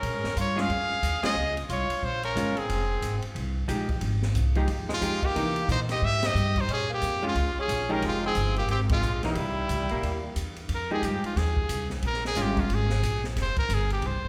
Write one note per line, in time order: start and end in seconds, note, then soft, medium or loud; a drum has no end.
0.00 0.13 A#2 medium
0.00 0.36 C#4 medium
0.00 0.39 A#4 medium
0.00 kick soft
0.00 ride medium
0.13 0.24 G#2 medium
0.24 0.35 F2 medium
0.24 snare soft
0.36 0.68 G2 medium
0.36 0.59 F4 medium
0.36 kick soft
0.36 hi-hat pedal medium
0.36 ride medium
0.41 0.63 C#5 medium
0.56 0.68 G#3 medium
0.56 0.68 C#4 medium
0.56 0.69 F4 medium
0.56 1.23 G#4 medium
0.56 snare soft
0.61 1.25 F5 loud
0.69 0.88 F2 medium
0.69 kick soft
0.69 ride soft
0.89 muted upright bass stroke soft
1.02 1.22 D#2 medium
1.02 kick soft
1.02 hi-hat pedal soft
1.02 ride medium
1.23 1.35 G#3 medium
1.23 1.35 C#4 medium
1.23 1.35 F4 medium
1.23 1.54 G#4 medium
1.23 1.55 D#5 medium
1.23 muted upright bass stroke soft
1.23 snare medium
1.23 ride medium
1.35 1.68 C#2 medium
1.57 ride soft
1.69 1.88 C2 medium
1.69 2.04 F4 medium
1.69 2.06 C#5 medium
1.69 kick soft
1.69 hi-hat pedal soft
1.69 ride medium
1.89 muted upright bass stroke soft
1.89 ride medium
2.02 2.35 A#1 medium
2.02 2.24 F4 medium
2.02 2.24 C5 medium
2.02 kick soft
2.23 2.60 C#4 medium
2.23 2.59 A#4 medium
2.23 ride soft
2.35 2.68 G1 medium
2.35 2.54 G#3 medium
2.35 2.55 C#4 medium
2.35 2.55 F4 medium
2.35 kick soft
2.35 hi-hat pedal medium
2.35 ride medium
2.57 3.24 C4 medium
2.57 3.24 G#4 medium
2.57 ride soft
2.69 3.01 F1 medium
2.69 kick soft
2.69 ride medium
3.02 3.21 G#1 medium
3.02 kick soft
3.02 hi-hat pedal soft
3.02 ride medium
3.22 muted upright bass stroke soft
3.22 ride soft
3.35 3.68 C2 medium
3.35 kick soft
3.35 ride medium
3.68 4.00 A#1 medium
3.68 3.87 F3 medium
3.68 3.87 G#3 medium
3.68 3.87 D#4 medium
3.68 3.88 G4 medium
3.68 kick soft
3.68 hi-hat pedal medium
3.68 ride medium
3.89 kick soft
3.89 ride soft
4.01 4.34 G#1 medium
4.01 kick soft
4.01 ride medium
4.22 snare soft
4.35 4.67 C2 medium
4.35 kick soft
4.35 hi-hat pedal medium
4.35 ride medium
4.55 4.68 F3 medium
4.55 4.68 G#3 medium
4.55 4.68 D#4 medium
4.55 4.68 G4 medium
4.55 ride soft
4.68 5.01 D#2 medium
4.68 kick soft
4.68 ride medium
4.89 5.24 G#3 medium
4.89 snare soft
4.94 5.27 F4 medium
5.01 5.34 F2 medium
5.01 5.20 F3 medium
5.01 5.21 G#3 soft
5.01 5.21 D#4 medium
5.01 5.21 G4 medium
5.01 kick soft
5.01 hi-hat pedal soft
5.01 ride medium
5.23 5.69 A#3 medium
5.23 5.70 G4 medium
5.23 kick medium
5.23 ride soft
5.35 5.68 C3 medium
5.35 5.85 E3 medium
5.35 5.86 A#3 medium
5.35 5.86 D#4 medium
5.35 kick soft
5.35 ride medium
5.56 ride soft
5.68 6.01 A#2 medium
5.68 5.80 D#4 medium
5.68 5.80 C5 medium
5.68 kick soft
5.68 hi-hat pedal medium
5.68 ride medium
5.89 6.02 G4 medium
5.89 6.06 D#5 medium
5.89 snare soft
5.89 ride medium
6.02 6.34 G#2 medium
6.02 6.23 G4 medium
6.02 6.28 E5 loud
6.02 kick soft
6.23 6.60 G4 medium
6.23 6.62 D#5 medium
6.23 snare medium
6.23 ride medium
6.34 6.68 G2 medium
6.34 hi-hat pedal medium
6.56 6.70 D#4 medium
6.56 kick soft
6.56 ride soft
6.61 6.72 C5 medium
6.68 7.01 A#2 medium
6.68 6.89 C#4 medium
6.68 kick soft
6.68 ride medium
6.73 6.91 G#4 loud
6.90 7.21 A#3 medium
6.94 7.23 G4 medium
7.02 7.35 F2 medium
7.02 kick soft
7.02 hi-hat pedal medium
7.02 ride medium
7.22 7.34 G#3 medium
7.22 7.55 G#3 medium
7.22 7.35 C#4 medium
7.22 7.35 F4 medium
7.27 7.57 F4 medium
7.35 7.55 C#2 medium
7.35 kick soft
7.35 ride medium
7.56 7.92 C#4 medium
7.56 muted upright bass stroke soft
7.61 7.94 G#4 medium
7.68 8.01 A#1 medium
7.68 kick soft
7.68 hi-hat pedal medium
7.68 ride medium
7.89 8.33 F3 medium
7.89 8.34 G#3 medium
7.89 8.04 C#4 medium
7.89 8.33 D#4 medium
7.89 8.34 G4 medium
7.89 8.04 A#4 medium
8.02 8.35 F1 medium
8.02 8.23 G#3 medium
8.02 kick soft
8.02 ride medium
8.07 8.24 F4 medium
8.26 8.56 C4 medium
8.26 8.56 G#4 medium
8.35 8.68 G1 medium
8.35 kick soft
8.35 hi-hat pedal medium
8.35 ride medium
8.56 8.70 A#3 medium
8.56 8.69 G4 medium
8.56 ride soft
8.68 9.01 G#1 medium
8.68 8.81 C4 medium
8.68 8.80 G4 medium
8.68 kick soft
8.68 ride medium
8.89 9.22 G#3 medium
8.89 9.22 F4 medium
8.89 kick medium
8.89 ride medium
9.02 9.35 A#1 medium
9.02 hi-hat pedal soft
9.23 9.35 E3 medium
9.23 10.33 G3 medium
9.23 9.35 A#3 medium
9.23 9.36 D#4 medium
9.23 10.33 E4 medium
9.23 snare soft
9.23 ride soft
9.35 9.68 C2 medium
9.35 kick soft
9.35 ride medium
9.69 9.79 C#2 medium
9.69 kick soft
9.69 hi-hat pedal medium
9.69 ride medium
9.79 9.91 C2 soft
9.89 10.02 A#1 medium
9.89 10.34 A#3 medium
9.89 ride soft
10.03 10.35 D#2 medium
10.03 kick soft
10.03 ride medium
10.36 10.68 E2 medium
10.36 kick soft
10.36 hi-hat pedal medium
10.36 ride medium
10.56 ride soft
10.69 11.01 F2 medium
10.69 kick soft
10.69 ride medium
10.75 10.92 A#4 medium
10.91 11.34 F3 medium
10.91 11.34 G#3 medium
10.91 11.34 D#4 medium
10.91 11.35 G4 medium
10.91 11.07 G#4 medium
11.02 11.22 G2 medium
11.02 11.25 G4 medium
11.02 kick soft
11.02 hi-hat pedal medium
11.02 ride medium
11.23 11.39 F4 medium
11.23 muted upright bass stroke soft
11.23 ride soft
11.36 11.68 D#2 medium
11.36 11.91 G#4 medium
11.36 kick soft
11.36 snare soft
11.36 ride medium
11.57 kick medium
11.69 12.02 C2 medium
11.69 kick soft
11.69 hi-hat pedal medium
11.69 ride medium
11.90 snare soft
12.02 12.35 A#1 medium
12.02 kick soft
12.02 ride medium
12.07 12.24 A#4 medium
12.13 snare soft
12.25 12.43 G#4 medium
12.25 snare soft
12.35 12.69 G1 medium
12.35 12.86 G#3 medium
12.35 12.86 C#4 medium
12.35 12.87 F4 medium
12.35 kick soft
12.35 snare soft
12.35 hi-hat pedal soft
12.35 ride medium
12.42 12.62 G4 medium
12.57 12.76 F4 medium
12.57 kick medium
12.57 ride soft
12.69 13.02 G#1 medium
12.69 kick soft
12.69 ride medium
12.74 13.26 G#4 medium
12.89 snare soft
13.03 13.35 A#1 medium
13.03 kick soft
13.03 hi-hat pedal soft
13.03 ride medium
13.24 snare soft
13.36 13.55 F1 medium
13.36 kick soft
13.36 snare soft
13.36 ride medium
13.42 13.58 C5 medium
13.56 13.76 A#4 medium
13.56 muted upright bass stroke soft
13.56 kick medium
13.56 ride soft
13.69 14.02 G1 loud
13.69 kick soft
13.69 hi-hat pedal medium
13.69 ride medium
13.74 13.93 G#4 medium
13.90 14.08 G4 medium
13.90 ride soft
14.02 14.15 C2 medium
14.02 kick soft
14.02 ride medium
14.07 14.28 C5 medium
14.13 14.24 G#1 medium
14.24 14.28 F1 medium